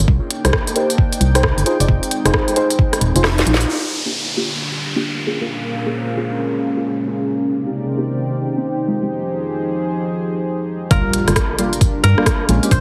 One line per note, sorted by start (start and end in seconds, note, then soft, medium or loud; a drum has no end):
0.08 0.19 C2 loud
0.08 1.64 A#3 medium
0.08 1.64 D4 medium
0.08 3.65 D#4 medium
0.08 3.65 G5 loud
0.08 kick loud
0.31 closed hi-hat loud
0.45 0.51 C2 medium
0.45 0.50 D#4 medium
0.45 0.50 G4 medium
0.45 0.50 A#4 medium
0.45 0.50 C5 medium
0.45 cross-stick medium
0.45 closed hi-hat medium
0.53 kick loud
0.53 cross-stick loud
0.67 closed hi-hat medium
0.76 0.89 D#4 medium
0.76 0.89 G4 medium
0.76 0.89 A#4 medium
0.76 0.89 C5 loud
0.76 closed hi-hat medium
0.90 closed hi-hat medium
0.98 kick loud
1.13 closed hi-hat medium
1.21 1.52 C2 loud
1.21 closed hi-hat loud
1.35 1.43 D#4 loud
1.35 1.43 G4 medium
1.35 1.43 A#4 loud
1.35 1.43 C5 loud
1.35 cross-stick medium
1.35 closed hi-hat medium
1.43 kick loud
1.43 cross-stick loud
1.57 1.64 G1 medium
1.57 closed hi-hat soft
1.66 3.67 G#3 medium
1.66 3.67 C4 medium
1.66 1.77 D#4 medium
1.66 1.77 F4 medium
1.66 1.77 G#4 medium
1.66 1.77 C5 loud
1.66 closed hi-hat medium
1.80 1.86 F1 medium
1.80 1.85 D#4 medium
1.80 1.85 F4 medium
1.80 1.85 G#4 medium
1.80 1.85 D5 medium
1.80 closed hi-hat medium
1.89 1.99 F1 loud
1.89 kick loud
2.03 closed hi-hat soft
2.11 closed hi-hat loud
2.25 2.32 F1 medium
2.25 2.54 D#4 loud
2.25 2.54 F4 medium
2.25 2.54 G#4 medium
2.25 2.54 C5 loud
2.25 cross-stick medium
2.25 closed hi-hat medium
2.34 kick loud
2.34 cross-stick loud
2.48 closed hi-hat medium
2.56 2.69 D#4 loud
2.56 2.69 F4 medium
2.56 2.69 G#4 medium
2.56 2.69 C5 loud
2.56 closed hi-hat loud
2.70 closed hi-hat medium
2.79 kick loud
2.93 cross-stick medium
2.93 closed hi-hat medium
3.01 3.12 D#1 medium
3.01 closed hi-hat loud
3.15 3.43 F1 loud
3.15 3.23 D#4 medium
3.15 3.23 F4 medium
3.15 3.23 G#4 medium
3.15 3.23 C5 medium
3.15 closed hi-hat medium
3.24 cross-stick loud
3.24 snare medium
3.38 snare medium
3.38 closed hi-hat soft
3.46 3.65 A#1 medium
3.46 3.55 D#4 medium
3.46 3.55 F4 medium
3.46 3.55 G#4 medium
3.46 3.55 C5 loud
3.46 closed hi-hat medium
3.54 snare loud
3.61 closed hi-hat medium
3.69 5.25 A#3 medium
3.69 5.27 D4 medium
3.69 5.25 D4 medium
3.69 7.26 F4 medium
3.69 5.25 G4 medium
3.69 downlifter medium
4.00 5.27 G4 medium
4.00 9.10 A#4 medium
4.06 4.11 A#3 medium
4.06 4.11 D4 medium
4.06 4.11 F4 medium
4.06 4.11 G4 medium
4.37 4.50 A#3 medium
4.37 4.50 D4 medium
4.37 4.50 F4 medium
4.37 4.50 G4 medium
4.41 7.94 F5 medium
4.96 5.04 A#3 loud
4.96 5.04 D4 medium
4.96 5.04 F4 medium
4.96 5.04 G4 loud
5.27 7.28 A#2 medium
5.27 5.38 A#3 medium
5.27 7.30 C#4 medium
5.27 5.38 C#4 medium
5.27 7.28 C#4 medium
5.27 5.38 F4 medium
5.27 7.28 G#4 medium
5.27 5.38 G#4 loud
5.27 7.28 C5 medium
5.41 5.46 A#3 medium
5.41 5.46 C#4 medium
5.41 5.46 F4 medium
5.41 5.46 A#4 medium
5.45 7.30 G#4 medium
5.86 6.15 A#3 medium
5.86 6.15 C#4 medium
5.86 6.15 F4 medium
5.86 6.15 G#4 loud
6.17 6.30 A#3 loud
6.17 6.30 C#4 medium
6.17 6.30 F4 medium
6.17 6.30 G#4 loud
6.76 6.84 A#3 medium
6.76 6.84 C#4 medium
6.76 6.84 F4 medium
6.76 6.84 G#4 medium
7.07 7.16 A#3 medium
7.07 7.16 C#4 medium
7.07 7.16 F4 medium
7.07 7.16 G#4 medium
7.30 8.86 C3 medium
7.30 10.87 D#4 medium
7.30 9.10 D#4 medium
7.30 10.87 G4 medium
7.30 8.86 A#4 medium
7.30 8.86 D5 medium
7.44 9.10 C5 medium
7.66 7.71 A#3 medium
7.66 7.71 C4 medium
7.66 7.71 D#4 medium
7.66 7.71 G4 medium
7.66 9.10 G5 medium
7.97 8.11 A#3 medium
7.97 8.11 C4 medium
7.97 8.11 D#4 medium
7.97 8.11 G4 medium
8.57 8.65 A#3 medium
8.57 8.65 C4 medium
8.57 8.65 D#4 medium
8.57 8.65 G4 loud
8.88 10.89 F3 medium
8.88 8.99 G#3 medium
8.88 8.99 C4 medium
8.88 8.99 D#4 medium
8.88 8.99 F4 loud
8.88 10.89 G#4 medium
8.88 10.89 C5 medium
9.02 9.07 G#3 medium
9.02 9.07 C4 medium
9.02 9.07 D#4 medium
9.02 9.07 G4 medium
10.91 11.02 G1 loud
10.91 11.22 G3 loud
10.91 11.22 A#3 medium
10.91 12.49 D4 medium
10.91 11.22 D4 medium
10.91 12.47 D4 medium
10.91 11.22 F4 loud
10.91 12.80 F4 medium
10.91 12.47 G4 medium
10.91 12.03 A#4 medium
10.91 12.47 A#4 loud
10.91 kick loud
10.91 closed hi-hat medium
10.91 impact medium
11.13 closed hi-hat loud
11.28 11.34 G1 medium
11.28 11.32 G3 medium
11.28 11.32 A#3 medium
11.28 11.32 D4 medium
11.28 11.32 F4 medium
11.28 cross-stick medium
11.28 closed hi-hat medium
11.36 kick loud
11.36 cross-stick loud
11.36 closed hi-hat medium
11.42 12.49 G4 medium
11.56 11.72 G3 medium
11.56 11.72 A#3 medium
11.56 11.72 D4 medium
11.56 11.72 F4 loud
11.56 12.80 A#4 medium
11.56 closed hi-hat medium
11.73 closed hi-hat soft
11.81 kick loud
11.81 closed hi-hat medium
12.04 12.14 G2 medium
12.04 12.80 A#4 loud
12.04 closed hi-hat loud
12.18 12.26 G3 loud
12.18 12.26 A#3 medium
12.18 12.26 D4 medium
12.18 12.26 F4 loud
12.18 cross-stick medium
12.26 kick loud
12.26 cross-stick loud
12.26 closed hi-hat medium
12.49 12.60 A#1 medium
12.49 12.60 G#3 medium
12.49 12.59 A#3 medium
12.49 12.80 C#4 medium
12.49 12.59 C#4 medium
12.49 12.59 F4 loud
12.49 12.80 G#4 medium
12.49 12.80 C5 loud
12.49 closed hi-hat loud
12.62 12.68 G#3 medium
12.62 12.68 A#3 medium
12.62 12.68 C#4 medium
12.62 12.68 G4 medium
12.62 12.80 G#4 medium
12.62 closed hi-hat soft
12.71 12.80 A#1 loud
12.71 12.80 C5 medium
12.71 kick loud
12.71 closed hi-hat medium